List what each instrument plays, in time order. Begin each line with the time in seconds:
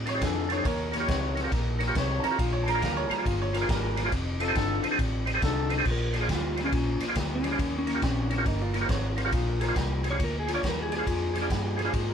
Already playing: fingered electric bass A2
0.06 clean electric guitar F2 C3, tonewheel organ A4 C5, upright piano C#5, snare, ride
0.14 tonewheel organ D#4 G4 A4 C5
0.21 clean electric guitar F2 D3, fingered electric bass F2, horn section D#4 F4 A4, upright piano G#4, kick, snare, ride
0.49 clean electric guitar F2 D3, tonewheel organ A4 C5, upright piano C#5, snare, ride
0.56 tonewheel organ D#4 G4 A4 C5
0.65 fingered electric bass D#2, clean electric guitar D#3 A#3, upright piano A#4 C#5, kick, snare, ride
0.92 clean electric guitar D#3 A#3, horn section D#4 G4 C#5, tonewheel organ A#4 C#5, snare, ride
1.00 tonewheel organ F4 G4 A#4 C#5
1.08 fingered electric bass C#2, clean electric guitar D#3 C4, kick, snare, ride
1.35 clean electric guitar D#3 C4, tonewheel organ A#4 C#5, snare, ride
1.44 tonewheel organ F4 G4 A#4 C#5
1.52 fingered electric bass A#1, clean electric guitar D#3 A#3, kick, snare, ride
1.79 clean electric guitar D#3 A#3, tonewheel organ A#4 C#5, snare, ride
1.88 tonewheel organ F4 G4 A#4 C#5
1.95 fingered electric bass C2, clean electric guitar D#3 C4, horn section D#4 G4 C#5, kick, snare, ride
2.20 clean electric guitar D#3, tonewheel organ A#4, upright piano A5, ride
2.24 clean electric guitar C4, tonewheel organ C#5, upright piano A#5, snare
2.31 tonewheel organ F4 G4 A#4 C#5
2.38 fingered electric bass A#1, clean electric guitar A#2 F3, upright piano F5, kick, snare, ride
2.53 upright piano C#5
2.64 clean electric guitar A#2 F3, horn section D4 G#4 A#4, tonewheel organ C5, upright piano A5
2.68 tonewheel organ D5, upright piano A#5, snare, ride
2.74 tonewheel organ F4 G#4 C5 D5
2.82 fingered electric bass D2, clean electric guitar A#2 G3, upright piano F5, kick, snare, ride
2.97 upright piano C#5
3.08 clean electric guitar A#2 G3, tonewheel organ C5 F5, upright piano A5, muted fingered electric bass stroke, ride
3.12 upright piano A#5, snare
3.18 tonewheel organ F4 G#4 C5 D5
3.25 fingered electric bass G1, clean electric guitar A#2 F3, upright piano F5, kick, snare, ride
3.42 upright piano C#5
3.53 clean electric guitar A#2 F3, upright piano A#4, tonewheel organ C5 F5, snare, ride
3.61 tonewheel organ F4 G#4 C5 D5
3.68 fingered electric bass G#1, clean electric guitar A#2 G3, horn section D4 G#4 A#4, kick, snare, ride
3.97 clean electric guitar A#2 G3, tonewheel organ C5 D5, snare, ride
4.05 tonewheel organ F4 G#4 C5 D5
4.12 fingered electric bass F1, clean electric guitar F2 C3, kick, snare, ride
4.40 clean electric guitar F2 C3, horn section D#4 F4 A4, tonewheel organ C5 D#5, snare, ride
4.48 tonewheel organ G4 A4 C5 D#5
4.55 fingered electric bass G1, clean electric guitar F2 D3, kick, snare, ride
4.83 clean electric guitar F2 D3, tonewheel organ C5 D#5, snare, ride
4.91 tonewheel organ G4 A4 C5 D#5
4.98 fingered electric bass A1, clean electric guitar F2 C3, kick, snare, ride
5.26 clean electric guitar F2 C3, tonewheel organ C5 D#5, snare, ride
5.34 tonewheel organ G4 A4 C5 D#5
5.42 fingered electric bass C2, clean electric guitar F2 D3, horn section D#4 F4 A4, kick, snare, ride
5.70 clean electric guitar F2 D3, tonewheel organ C5 D#5, snare, ride
5.78 tonewheel organ G4 A4 C5 D#5
5.85 fingered electric bass A#1, clean electric guitar A#2 F3, kick, snare, crash
5.91 electric slide guitar A#4
6.13 clean electric guitar A#2 F3, tonewheel organ C5 D5, snare, ride
6.20 tonewheel organ F4 G#4 C5 D5, electric slide guitar G#4
6.29 fingered electric bass D2, clean electric guitar A#2 G3, kick, snare, ride
6.35 electric slide guitar F4
6.57 clean electric guitar A#2 G3, tonewheel organ C5 D5, snare, ride
6.64 electric slide guitar C#4, tonewheel organ F4 G#4 C5 D5
6.72 fingered electric bass A#1, clean electric guitar A#2 F3, kick, snare, ride
7.00 clean electric guitar A#2 F3, tonewheel organ C5 D5, snare, ride
7.08 tonewheel organ F4 G#4 C5 D5
7.15 fingered electric bass D2, clean electric guitar A#2 G3, kick, snare, ride
7.35 electric slide guitar C#4
7.43 clean electric guitar A#2 G3, tonewheel organ C5 D5, snare, ride
7.51 tonewheel organ F4 G#4 C5 D5
7.59 fingered electric bass D#2, clean electric guitar D#3 A#3, kick, snare, ride
7.78 electric slide guitar C#4
7.87 clean electric guitar D#3 A#3, tonewheel organ A#4 C#5, snare, ride
7.94 tonewheel organ F4 G4 A#4 C#5
8.02 fingered electric bass A#1, clean electric guitar D#3 C4, kick, snare, ride
8.30 clean electric guitar D#3 C4, tonewheel organ A#4 C#5, snare, ride
8.38 tonewheel organ F4 G4 A#4 C#5
8.45 fingered electric bass G1, clean electric guitar D#3 A#3, upright piano D#4, kick, snare, ride
8.62 upright piano F4
8.74 clean electric guitar D#3 A#3, tonewheel organ A#4 C#5, upright piano A#4, snare, ride
8.81 tonewheel organ F4 G4 A#4 C#5
8.86 fingered electric bass G#1, clean electric guitar D#3, upright piano C5, kick, ride
8.90 clean electric guitar C4, upright piano C#5, snare
9.17 clean electric guitar D#3 C4, tonewheel organ A#4 C5, snare, ride
9.25 tonewheel organ F4 G4 A#4 C#5
9.32 fingered electric bass A#1, clean electric guitar A#2 F3, upright piano F5, kick, snare, ride
9.48 upright piano A#4
9.58 clean electric guitar A#2 F3, tonewheel organ G#4, upright piano A4, ride
9.62 upright piano A#4, tonewheel organ C5, snare
9.68 tonewheel organ D4 F4 G#4 C5
9.76 fingered electric bass C2, clean electric guitar A#2 G3, kick, snare, ride
10.04 clean electric guitar A#2 G3, tonewheel organ G#4 C5, snare, ride
10.11 tonewheel organ D4 F4 G#4 C5, electric slide guitar C#5
10.20 fingered electric bass D2, clean electric guitar A#2 F3, kick, snare, ride
10.24 electric slide guitar A#4
10.40 electric slide guitar G#4
10.47 clean electric guitar A#2 F3, tonewheel organ G#4 C5, snare, ride
10.54 tonewheel organ D4 F4 G#4 D5, electric slide guitar C#5
10.63 fingered electric bass D#2, clean electric guitar A#2 G3, kick, snare, ride
10.68 electric slide guitar A#4
10.83 electric slide guitar G#4
10.90 clean electric guitar A#2 G3, tonewheel organ G#4 D5, snare, ride
10.97 tonewheel organ D4 F4 G#4 C5, electric slide guitar G#4
11.07 fingered electric bass F2, clean electric guitar A#2 F3, kick, snare, ride
11.34 clean electric guitar A#2 F3, tonewheel organ G#4 C5, snare, ride
11.41 tonewheel organ D4 F4 G#4 D5
11.50 fingered electric bass G2, clean electric guitar A#2 G3, kick, snare, ride
11.76 clean electric guitar A#2 G3, upright piano G4, tonewheel organ G#4 C5, snare, ride
11.81 upright piano G#4
11.85 tonewheel organ D4 F4 G#4 C5
11.93 fingered electric bass G#2, clean electric guitar A#2 F3, kick, snare, ride
12.09 upright piano A#4